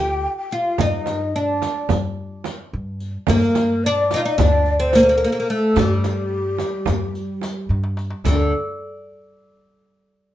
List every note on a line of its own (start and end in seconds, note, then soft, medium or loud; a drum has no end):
0.00 0.25 D2 loud
0.00 0.48 G4 loud
0.00 0.37 G5 medium
0.38 0.56 G5 medium
0.51 0.80 F4 medium
0.51 0.83 F5 medium
0.51 riq soft
0.51 darbuka ka soft
0.78 1.64 G2 medium
0.78 1.35 D#4 loud
0.78 1.36 D#5 medium
0.78 riq medium
0.78 frame drum medium
0.78 darbuka dum medium
1.06 riq medium
1.06 darbuka tek medium
1.06 frame drum medium
1.36 1.93 D4 medium
1.36 1.41 D#5 medium
1.40 1.98 D5 medium
1.62 riq medium
1.62 darbuka tek medium
1.62 frame drum medium
1.89 2.53 G3 loud
1.89 riq medium
1.89 frame drum medium
1.89 darbuka dum medium
2.44 riq medium
2.44 darbuka tek medium
2.44 frame drum medium
2.73 3.15 G2 medium
3.00 riq soft
3.00 darbuka ka soft
3.27 4.13 G2 loud
3.27 3.86 A#3 loud
3.27 3.86 A#4 medium
3.27 riq medium
3.27 frame drum loud
3.27 darbuka dum medium
3.55 riq medium
3.55 darbuka tek medium
3.55 frame drum medium
3.84 4.13 D4 loud
3.84 4.14 D5 loud
4.11 4.20 D#4 loud
4.11 4.25 D#5 medium
4.11 riq soft
4.11 darbuka tek medium
4.11 frame drum medium
4.16 4.24 F4 medium
4.25 4.38 D#4 medium
4.25 4.42 D#5 medium
4.38 5.23 D2 loud
4.38 4.79 D4 medium
4.38 4.80 D5 loud
4.38 riq medium
4.38 frame drum medium
4.38 darbuka dum medium
4.66 riq soft
4.66 darbuka ka soft
4.80 4.94 C4 medium
4.80 4.97 C5 medium
4.80 4.85 D5 soft
4.93 5.02 A#3 loud
4.93 5.36 A#4 medium
4.93 riq medium
4.93 darbuka tek medium
4.93 frame drum medium
5.03 5.08 A#3 medium
5.09 5.16 A#3 medium
5.18 5.23 A#3 medium
5.24 5.31 A#3 medium
5.32 5.38 A#3 medium
5.37 5.47 A#3 medium
5.37 5.54 A#4 medium
5.49 5.78 A3 medium
5.49 5.81 A4 medium
5.49 riq soft
5.49 darbuka ka soft
5.76 6.62 G2 loud
5.76 7.68 G3 medium
5.76 7.72 G4 medium
5.76 riq medium
5.76 frame drum loud
5.76 darbuka dum medium
6.04 riq medium
6.04 darbuka tek medium
6.04 frame drum medium
6.58 riq medium
6.58 darbuka tek medium
6.58 frame drum medium
6.86 7.51 G3 loud
6.86 riq medium
6.86 frame drum medium
6.86 darbuka dum medium
7.15 riq soft
7.15 darbuka ka soft
7.41 riq soft
7.41 darbuka tek medium
7.41 frame drum medium
7.57 darbuka ka soft
7.69 8.12 G2 medium
7.69 darbuka tek medium
7.84 darbuka ka medium
7.97 riq soft
7.97 darbuka tek medium
8.10 darbuka ka medium
8.24 8.52 D2 medium
8.24 8.52 D3 medium
8.24 8.53 D4 medium
8.24 riq medium
8.24 darbuka dum medium
8.24 frame drum medium